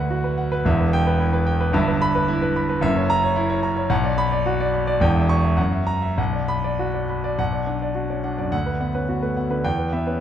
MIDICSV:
0, 0, Header, 1, 2, 480
1, 0, Start_track
1, 0, Key_signature, 2, "minor"
1, 0, Tempo, 544959
1, 574, Time_signature, 2, 2, 24, 8
1, 4409, Tempo, 593472
1, 6329, Tempo, 566038
1, 8723, End_track
2, 0, Start_track
2, 0, Title_t, "Grand piano"
2, 0, Program_c, 0, 0
2, 0, Control_c, 0, 64, 127
2, 0, Note_on_c, 0, 38, 86
2, 0, Note_on_c, 0, 71, 64
2, 0, Note_on_c, 0, 78, 84
2, 92, Note_on_c, 0, 66, 67
2, 166, Note_off_c, 0, 71, 0
2, 212, Note_on_c, 0, 71, 62
2, 286, Note_off_c, 0, 66, 0
2, 331, Note_off_c, 0, 78, 0
2, 331, Note_on_c, 0, 78, 69
2, 406, Note_off_c, 0, 71, 0
2, 456, Note_on_c, 0, 71, 83
2, 525, Note_off_c, 0, 78, 0
2, 545, Note_off_c, 0, 38, 0
2, 570, Note_on_c, 0, 28, 91
2, 575, Note_off_c, 0, 71, 0
2, 580, Note_on_c, 0, 40, 94
2, 582, Note_on_c, 0, 76, 89
2, 591, Control_c, 0, 64, 0
2, 704, Note_on_c, 0, 71, 62
2, 733, Control_c, 0, 64, 127
2, 769, Note_off_c, 0, 76, 0
2, 822, Note_on_c, 0, 79, 105
2, 889, Note_off_c, 0, 71, 0
2, 941, Note_on_c, 0, 71, 74
2, 1008, Note_off_c, 0, 79, 0
2, 1057, Note_on_c, 0, 64, 78
2, 1128, Note_off_c, 0, 71, 0
2, 1173, Note_on_c, 0, 71, 76
2, 1246, Note_off_c, 0, 64, 0
2, 1290, Note_on_c, 0, 79, 79
2, 1364, Note_off_c, 0, 71, 0
2, 1413, Note_on_c, 0, 71, 77
2, 1483, Note_off_c, 0, 79, 0
2, 1501, Note_off_c, 0, 28, 0
2, 1506, Note_off_c, 0, 40, 0
2, 1523, Note_on_c, 0, 31, 101
2, 1532, Note_on_c, 0, 43, 93
2, 1533, Note_off_c, 0, 71, 0
2, 1533, Note_on_c, 0, 76, 96
2, 1547, Control_c, 0, 64, 0
2, 1653, Note_on_c, 0, 71, 73
2, 1675, Control_c, 0, 64, 127
2, 1726, Note_off_c, 0, 76, 0
2, 1776, Note_on_c, 0, 83, 118
2, 1846, Note_off_c, 0, 71, 0
2, 1893, Note_on_c, 0, 71, 82
2, 1966, Note_off_c, 0, 83, 0
2, 2010, Note_on_c, 0, 64, 90
2, 2085, Note_off_c, 0, 71, 0
2, 2130, Note_on_c, 0, 71, 75
2, 2203, Note_off_c, 0, 64, 0
2, 2256, Note_on_c, 0, 83, 81
2, 2322, Note_off_c, 0, 71, 0
2, 2371, Note_on_c, 0, 71, 78
2, 2444, Note_off_c, 0, 83, 0
2, 2456, Note_off_c, 0, 31, 0
2, 2461, Note_off_c, 0, 43, 0
2, 2477, Note_on_c, 0, 30, 93
2, 2488, Note_on_c, 0, 42, 102
2, 2488, Note_on_c, 0, 76, 106
2, 2490, Note_off_c, 0, 71, 0
2, 2504, Control_c, 0, 64, 0
2, 2608, Note_on_c, 0, 73, 78
2, 2657, Control_c, 0, 64, 127
2, 2679, Note_off_c, 0, 76, 0
2, 2728, Note_on_c, 0, 82, 113
2, 2798, Note_off_c, 0, 73, 0
2, 2851, Note_on_c, 0, 73, 79
2, 2916, Note_off_c, 0, 82, 0
2, 2959, Note_on_c, 0, 64, 91
2, 3036, Note_off_c, 0, 73, 0
2, 3079, Note_on_c, 0, 73, 83
2, 3149, Note_off_c, 0, 64, 0
2, 3197, Note_on_c, 0, 82, 78
2, 3269, Note_off_c, 0, 73, 0
2, 3315, Note_on_c, 0, 73, 76
2, 3388, Note_off_c, 0, 82, 0
2, 3402, Note_off_c, 0, 30, 0
2, 3408, Note_off_c, 0, 42, 0
2, 3434, Note_on_c, 0, 35, 102
2, 3435, Note_on_c, 0, 78, 98
2, 3436, Note_off_c, 0, 73, 0
2, 3454, Control_c, 0, 64, 0
2, 3557, Note_on_c, 0, 74, 71
2, 3586, Control_c, 0, 64, 127
2, 3630, Note_off_c, 0, 78, 0
2, 3681, Note_on_c, 0, 83, 106
2, 3752, Note_off_c, 0, 74, 0
2, 3803, Note_on_c, 0, 74, 74
2, 3875, Note_off_c, 0, 83, 0
2, 3930, Note_on_c, 0, 66, 87
2, 3997, Note_off_c, 0, 74, 0
2, 4055, Note_on_c, 0, 74, 77
2, 4120, Note_off_c, 0, 66, 0
2, 4173, Note_on_c, 0, 83, 68
2, 4243, Note_off_c, 0, 74, 0
2, 4292, Note_on_c, 0, 74, 85
2, 4363, Note_off_c, 0, 83, 0
2, 4377, Note_off_c, 0, 35, 0
2, 4405, Note_on_c, 0, 28, 92
2, 4411, Note_off_c, 0, 74, 0
2, 4414, Note_on_c, 0, 40, 98
2, 4415, Note_on_c, 0, 79, 91
2, 4421, Control_c, 0, 64, 0
2, 4530, Note_on_c, 0, 76, 66
2, 4532, Control_c, 0, 64, 127
2, 4592, Note_off_c, 0, 79, 0
2, 4642, Note_on_c, 0, 85, 99
2, 4708, Note_off_c, 0, 76, 0
2, 4758, Note_on_c, 0, 76, 68
2, 4825, Note_off_c, 0, 85, 0
2, 4853, Note_off_c, 0, 28, 0
2, 4858, Note_off_c, 0, 40, 0
2, 4864, Note_on_c, 0, 78, 79
2, 4866, Note_on_c, 0, 42, 89
2, 4872, Note_off_c, 0, 76, 0
2, 4886, Control_c, 0, 64, 0
2, 4986, Note_on_c, 0, 76, 64
2, 5051, Control_c, 0, 64, 127
2, 5058, Note_off_c, 0, 78, 0
2, 5105, Note_on_c, 0, 82, 90
2, 5181, Note_off_c, 0, 76, 0
2, 5230, Note_on_c, 0, 76, 70
2, 5304, Note_off_c, 0, 82, 0
2, 5340, Note_off_c, 0, 42, 0
2, 5355, Note_off_c, 0, 76, 0
2, 5357, Note_on_c, 0, 35, 81
2, 5360, Note_on_c, 0, 78, 73
2, 5372, Control_c, 0, 64, 0
2, 5480, Note_on_c, 0, 74, 54
2, 5492, Control_c, 0, 64, 127
2, 5556, Note_off_c, 0, 78, 0
2, 5605, Note_on_c, 0, 83, 93
2, 5677, Note_off_c, 0, 74, 0
2, 5733, Note_on_c, 0, 74, 64
2, 5799, Note_off_c, 0, 83, 0
2, 5855, Note_on_c, 0, 66, 71
2, 5923, Note_off_c, 0, 74, 0
2, 5975, Note_on_c, 0, 74, 57
2, 6045, Note_off_c, 0, 66, 0
2, 6097, Note_on_c, 0, 83, 57
2, 6166, Note_off_c, 0, 74, 0
2, 6217, Note_on_c, 0, 74, 68
2, 6285, Note_off_c, 0, 83, 0
2, 6300, Note_off_c, 0, 35, 0
2, 6332, Note_off_c, 0, 74, 0
2, 6334, Note_on_c, 0, 35, 75
2, 6335, Note_on_c, 0, 78, 90
2, 6346, Control_c, 0, 64, 0
2, 6454, Note_on_c, 0, 74, 53
2, 6511, Control_c, 0, 64, 127
2, 6527, Note_off_c, 0, 78, 0
2, 6572, Note_on_c, 0, 62, 56
2, 6575, Note_on_c, 0, 78, 61
2, 6647, Note_off_c, 0, 74, 0
2, 6704, Note_on_c, 0, 74, 58
2, 6767, Note_off_c, 0, 62, 0
2, 6769, Note_off_c, 0, 78, 0
2, 6814, Note_on_c, 0, 66, 60
2, 6816, Note_on_c, 0, 62, 52
2, 6893, Note_off_c, 0, 74, 0
2, 6941, Note_on_c, 0, 74, 56
2, 6942, Note_on_c, 0, 61, 48
2, 7009, Note_off_c, 0, 66, 0
2, 7010, Note_off_c, 0, 62, 0
2, 7056, Note_on_c, 0, 78, 61
2, 7060, Note_off_c, 0, 61, 0
2, 7060, Note_on_c, 0, 62, 56
2, 7133, Note_off_c, 0, 74, 0
2, 7181, Note_on_c, 0, 74, 61
2, 7184, Note_on_c, 0, 42, 57
2, 7250, Note_off_c, 0, 78, 0
2, 7252, Note_off_c, 0, 62, 0
2, 7274, Note_off_c, 0, 35, 0
2, 7295, Note_on_c, 0, 38, 70
2, 7296, Note_on_c, 0, 78, 94
2, 7301, Note_off_c, 0, 74, 0
2, 7302, Note_off_c, 0, 42, 0
2, 7317, Control_c, 0, 64, 0
2, 7417, Note_on_c, 0, 71, 56
2, 7461, Control_c, 0, 64, 127
2, 7491, Note_off_c, 0, 78, 0
2, 7537, Note_on_c, 0, 59, 58
2, 7539, Note_on_c, 0, 78, 72
2, 7611, Note_off_c, 0, 71, 0
2, 7655, Note_on_c, 0, 61, 53
2, 7657, Note_on_c, 0, 71, 64
2, 7730, Note_off_c, 0, 59, 0
2, 7731, Note_off_c, 0, 78, 0
2, 7776, Note_off_c, 0, 61, 0
2, 7777, Note_on_c, 0, 59, 55
2, 7778, Note_on_c, 0, 66, 59
2, 7848, Note_off_c, 0, 71, 0
2, 7894, Note_on_c, 0, 57, 46
2, 7894, Note_on_c, 0, 71, 58
2, 7968, Note_off_c, 0, 59, 0
2, 7968, Note_off_c, 0, 66, 0
2, 8013, Note_on_c, 0, 78, 61
2, 8014, Note_off_c, 0, 57, 0
2, 8015, Note_on_c, 0, 59, 51
2, 8085, Note_off_c, 0, 71, 0
2, 8130, Note_on_c, 0, 50, 57
2, 8133, Note_on_c, 0, 71, 64
2, 8205, Note_off_c, 0, 78, 0
2, 8206, Note_off_c, 0, 59, 0
2, 8223, Note_off_c, 0, 38, 0
2, 8250, Note_on_c, 0, 40, 79
2, 8250, Note_on_c, 0, 79, 93
2, 8251, Note_off_c, 0, 50, 0
2, 8253, Note_off_c, 0, 71, 0
2, 8269, Control_c, 0, 64, 0
2, 8370, Note_on_c, 0, 71, 51
2, 8430, Control_c, 0, 64, 127
2, 8442, Note_off_c, 0, 79, 0
2, 8490, Note_on_c, 0, 59, 62
2, 8490, Note_on_c, 0, 76, 71
2, 8561, Note_off_c, 0, 71, 0
2, 8610, Note_on_c, 0, 71, 64
2, 8611, Note_on_c, 0, 61, 53
2, 8680, Note_off_c, 0, 59, 0
2, 8680, Note_off_c, 0, 76, 0
2, 8723, Note_off_c, 0, 40, 0
2, 8723, Note_off_c, 0, 61, 0
2, 8723, Note_off_c, 0, 71, 0
2, 8723, End_track
0, 0, End_of_file